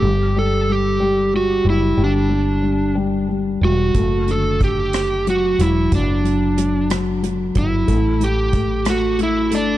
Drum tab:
HH |------|------|xxxxxx|xxxxxx|
SD |------|------|---r--|---r--|
BD |------|------|o-o---|o----o|

HH |xxxxxx|
SD |---r--|
BD |o-o---|